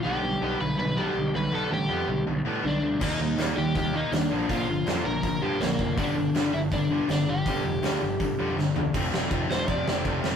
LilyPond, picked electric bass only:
\new Staff \with { instrumentName = "Picked electric bass" } { \clef bass \time 4/4 \key g \mixolydian \tempo 4 = 162 b,,8 b,,8 b,,8 b,,8 b,,4 b,,8 b,,8 | b,,8 a,,8 f,8 b,,8 b,,8 a,8 b,,8 d,8 | ees,8 ees,8 ees,8 ees,8 ees,4 ees,8 bes,,8 | bes,,8 g,,8 f,8 bes,,8 bes,,8 g,8 bes,,8 f,,8 |
g,,8 g,,8 g,,8 g,,8 g,,4 g,,8 g,,8 | g,,8 f,,8 d,8 g,,8 g,,8 f,8 g,,8 e,,8 | f,,8 f,,8 f,,8 f,,8 f,,8 f,,8 f,,8 f,,8 | }